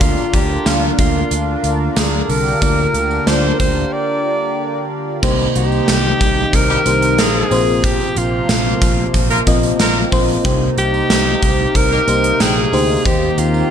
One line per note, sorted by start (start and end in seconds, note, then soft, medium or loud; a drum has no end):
0.00 0.15 D2 medium
0.00 0.62 D3 medium
0.00 5.19 D3 medium
0.00 0.48 A#3 medium
0.00 0.48 D4 medium
0.00 5.19 D4 medium
0.00 0.49 F4 medium
0.00 2.26 F4 medium
0.00 0.36 F4 medium
0.00 5.19 A#4 medium
0.00 0.49 D5 medium
0.00 kick loud
0.00 closed hi-hat medium
0.00 tambourine medium
0.17 tambourine soft
0.33 0.57 D2 loud
0.33 0.72 G4 medium
0.33 kick medium
0.33 closed hi-hat medium
0.33 tambourine soft
0.65 0.89 D2 loud
0.65 1.73 A#3 medium
0.65 1.73 D4 medium
0.65 1.73 F4 medium
0.65 1.73 F5 medium
0.65 snare loud
0.65 closed hi-hat medium
0.65 tambourine medium
0.98 1.22 D2 medium
0.98 1.60 F4 medium
0.98 kick medium
0.98 closed hi-hat medium
0.98 tambourine soft
1.31 1.55 D2 loud
1.31 closed hi-hat medium
1.31 tambourine soft
1.63 1.87 D2 medium
1.63 closed hi-hat medium
1.63 tambourine soft
1.96 2.20 D2 medium
1.96 2.31 G#4 medium
1.96 snare loud
1.96 closed hi-hat medium
1.96 tambourine medium
2.29 2.52 C2 medium
2.29 3.23 D3 medium
2.29 5.20 G4 medium
2.29 3.29 A#4 loud
2.29 open hi-hat medium
2.29 tambourine soft
2.46 tambourine soft
2.61 2.85 D2 loud
2.61 3.15 A#3 medium
2.61 3.15 D4 medium
2.61 3.15 F4 medium
2.61 3.16 D5 medium
2.61 kick loud
2.61 closed hi-hat medium
2.61 tambourine medium
2.78 tambourine soft
2.94 3.18 D2 medium
2.94 closed hi-hat medium
2.94 tambourine soft
3.11 tambourine soft
3.26 3.50 D2 loud
3.26 4.34 A#3 medium
3.26 4.34 D4 medium
3.26 4.34 F4 medium
3.26 3.59 C5 medium
3.26 4.34 D5 medium
3.26 snare loud
3.26 closed hi-hat medium
3.26 tambourine medium
3.60 3.83 D2 loud
3.60 3.94 C5 medium
3.60 kick loud
3.60 closed hi-hat medium
3.60 tambourine soft
3.92 4.90 D5 loud
5.22 5.46 C2 loud
5.22 13.01 C3 medium
5.22 6.17 C3 medium
5.22 7.49 D#3 medium
5.22 6.29 A#3 medium
5.22 10.40 A#3 medium
5.22 7.49 D#4 medium
5.22 6.30 D#4 medium
5.22 6.30 G4 medium
5.22 6.30 C5 medium
5.22 kick loud
5.22 crash medium
5.22 tambourine medium
5.39 tambourine soft
5.55 5.79 C2 medium
5.55 6.56 G4 loud
5.55 closed hi-hat medium
5.55 tambourine soft
5.72 tambourine soft
5.88 6.12 C2 loud
5.88 snare loud
5.88 closed hi-hat medium
5.88 tambourine medium
6.21 6.44 C2 medium
6.21 kick loud
6.21 closed hi-hat medium
6.21 tambourine soft
6.53 6.77 C2 loud
6.53 7.22 A#4 loud
6.53 kick medium
6.53 closed hi-hat medium
6.53 tambourine soft
6.69 6.80 G3 medium
6.69 6.80 C4 medium
6.69 6.80 D#4 medium
6.69 6.80 G4 loud
6.85 7.18 C2 loud
6.85 7.39 A#3 medium
6.85 7.39 D#4 medium
6.85 7.39 G4 medium
6.85 7.40 C5 medium
6.85 closed hi-hat medium
6.85 tambourine medium
7.02 closed hi-hat medium
7.02 tambourine soft
7.18 7.42 A#1 medium
7.18 7.60 A#3 loud
7.18 7.60 C4 loud
7.18 7.60 F4 loud
7.18 7.86 G#4 loud
7.18 7.60 A#4 loud
7.18 snare loud
7.18 closed hi-hat medium
7.18 tambourine medium
7.51 7.98 A#1 medium
7.51 8.45 A#2 medium
7.51 10.41 F3 medium
7.51 8.58 A#3 medium
7.51 8.58 C4 medium
7.51 8.58 F4 medium
7.51 8.58 C5 medium
7.51 open hi-hat medium
7.51 tambourine soft
7.84 8.20 G4 loud
7.84 kick loud
7.84 closed hi-hat medium
7.84 tambourine medium
8.00 tambourine soft
8.16 8.40 A#1 loud
8.16 9.48 F4 medium
8.16 closed hi-hat medium
8.16 tambourine soft
8.49 8.72 A#1 loud
8.49 snare loud
8.49 closed hi-hat medium
8.49 tambourine medium
8.82 9.05 A#1 loud
8.82 kick medium
8.82 closed hi-hat medium
8.82 tambourine medium
9.14 9.38 A#1 loud
9.14 kick medium
9.14 closed hi-hat medium
9.14 tambourine soft
9.30 9.41 A#3 medium
9.30 9.41 C4 medium
9.30 9.41 F4 medium
9.30 9.41 A#4 medium
9.30 closed hi-hat soft
9.47 9.70 A#1 loud
9.47 10.00 A#3 medium
9.47 10.00 C4 medium
9.47 10.00 F4 medium
9.47 10.00 D#5 medium
9.47 kick medium
9.47 closed hi-hat medium
9.47 tambourine medium
9.63 closed hi-hat medium
9.63 tambourine soft
9.79 10.03 A#1 medium
9.79 10.00 A#3 loud
9.79 10.00 C4 medium
9.79 10.00 F4 medium
9.79 10.00 A#4 loud
9.79 snare loud
9.79 closed hi-hat medium
9.79 tambourine medium
10.12 10.36 A#1 medium
10.12 10.38 A#3 medium
10.12 10.39 C4 medium
10.12 10.39 F4 medium
10.12 10.39 C5 loud
10.12 kick loud
10.12 open hi-hat medium
10.12 tambourine soft
10.29 tambourine soft
10.44 10.68 C2 loud
10.44 11.38 C3 medium
10.44 11.51 A#3 medium
10.44 13.71 A#3 medium
10.44 13.03 D#4 medium
10.44 11.51 D#4 medium
10.44 11.51 G4 medium
10.44 11.52 C5 medium
10.44 kick loud
10.44 closed hi-hat medium
10.44 tambourine medium
10.77 11.01 C2 medium
10.77 11.78 G4 loud
10.77 closed hi-hat medium
10.77 tambourine soft
10.94 tambourine soft
11.10 11.33 C2 loud
11.10 snare loud
11.10 closed hi-hat medium
11.10 tambourine medium
11.42 11.66 C2 medium
11.42 kick loud
11.42 closed hi-hat medium
11.42 tambourine soft
11.75 11.98 C2 loud
11.75 12.43 A#4 loud
11.75 kick medium
11.75 closed hi-hat medium
11.75 tambourine soft
11.91 12.02 A#3 medium
11.91 12.02 D#4 medium
11.91 12.02 G4 medium
11.91 12.02 A#4 loud
12.07 12.31 C2 loud
12.07 12.61 A#3 medium
12.07 12.61 D#4 medium
12.07 12.61 G4 medium
12.07 12.61 C5 medium
12.07 closed hi-hat medium
12.07 tambourine medium
12.24 closed hi-hat medium
12.40 12.64 A#1 medium
12.40 12.61 D#4 medium
12.40 12.61 G4 medium
12.40 13.08 G#4 loud
12.40 12.61 A#4 loud
12.40 12.61 G5 medium
12.40 snare loud
12.40 closed hi-hat medium
12.40 tambourine medium
12.72 12.96 D2 medium
12.72 12.99 A#3 medium
12.72 12.99 D#4 medium
12.72 13.00 G4 medium
12.72 13.00 C5 medium
12.72 open hi-hat medium
12.72 tambourine soft
12.90 tambourine soft
13.05 13.29 D#2 loud
13.05 13.71 D#3 medium
13.05 13.71 A#3 medium
13.05 13.71 C4 medium
13.05 13.71 D#4 medium
13.05 13.71 G4 medium
13.05 13.41 G4 loud
13.05 13.71 C5 medium
13.05 kick loud
13.05 closed hi-hat medium
13.05 tambourine medium
13.38 13.61 D#2 loud
13.38 13.71 F4 medium
13.38 closed hi-hat medium
13.38 tambourine soft
13.54 tambourine soft